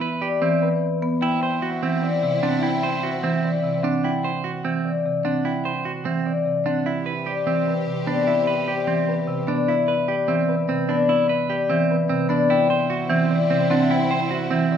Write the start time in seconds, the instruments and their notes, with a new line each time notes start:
Already playing: harp B4 D5 E5
0.01 clean electric guitar B4
0.21 clean electric guitar G4, harp D5
0.42 marimba E3, clean electric guitar C4
0.62 harp B4
1.03 marimba B3
1.21 violin section C4 E4, clean electric guitar E4, harp G5
1.43 clean electric guitar C5
1.62 clean electric guitar F#4, harp F#5
1.83 marimba E3, clean electric guitar C4
2.03 harp D5
2.23 marimba C3
2.42 marimba C4, clean electric guitar D4, harp F#5
2.62 clean electric guitar E4, harp G5
2.83 clean electric guitar C5
3.03 clean electric guitar F#4, harp F#5
3.23 marimba E3, clean electric guitar C4
3.44 harp D5
3.64 marimba C3
3.83 marimba C4, clean electric guitar D4, harp F#5
4.03 clean electric guitar E4, harp G5
4.24 clean electric guitar C5
4.44 clean electric guitar F#4, harp F#5
4.65 marimba E3, clean electric guitar C4
4.85 harp D5
5.06 marimba C3
5.25 marimba C4, clean electric guitar D4, harp F#5
5.45 clean electric guitar E4, harp G5
5.65 clean electric guitar C5
5.85 clean electric guitar F#4, harp F#5
6.05 marimba E3, clean electric guitar C4
6.26 harp D5
6.46 marimba C3
6.66 marimba C4, clean electric guitar D4, harp F#5
6.86 violin section C4 G4, clean electric guitar E4, harp E5
7.06 clean electric guitar B4
7.26 clean electric guitar G4, harp D5
7.47 marimba E3, clean electric guitar C4
7.67 harp B4
7.87 marimba C3
8.07 marimba B3, clean electric guitar D4, harp D5
8.27 clean electric guitar E4, harp E5
8.47 clean electric guitar B4
8.68 clean electric guitar G4, harp D5
8.87 marimba E3, clean electric guitar C4
9.08 harp B4
9.28 marimba C3
9.48 marimba B3, clean electric guitar D4, harp D5
9.68 clean electric guitar E4, harp E5
9.88 clean electric guitar B4
10.08 clean electric guitar G4, harp D5
10.28 marimba E3, clean electric guitar C4
10.48 harp B4
10.69 marimba C3, clean electric guitar C4
10.89 marimba B3, clean electric guitar D4, harp D5
11.09 clean electric guitar E4, harp E5
11.29 clean electric guitar B4
11.50 clean electric guitar G4, harp D5
11.69 marimba E3, clean electric guitar C4
11.91 harp B4
12.09 marimba C3, clean electric guitar C4
12.29 marimba B3, clean electric guitar D4, harp D5
12.50 violin section C4 E4, clean electric guitar E4, harp G5
12.70 clean electric guitar C5
12.90 clean electric guitar F#4, harp F#5
13.10 marimba E3, clean electric guitar C4
13.30 harp D5
13.50 marimba C3, clean electric guitar C4
13.70 marimba C4, clean electric guitar D4, harp F#5
13.90 clean electric guitar E4, harp G5
14.11 clean electric guitar C5
14.30 clean electric guitar F#4, harp F#5
14.51 marimba E3, clean electric guitar C4
14.71 harp D5